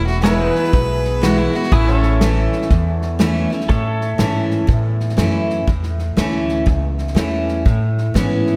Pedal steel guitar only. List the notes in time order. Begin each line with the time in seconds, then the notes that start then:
0.24 G#4 C#5 E5
0.50 B4
1.72 G#4 B4 E5
1.92 A4
1.98 C#5
3.69 A4 C#5 E5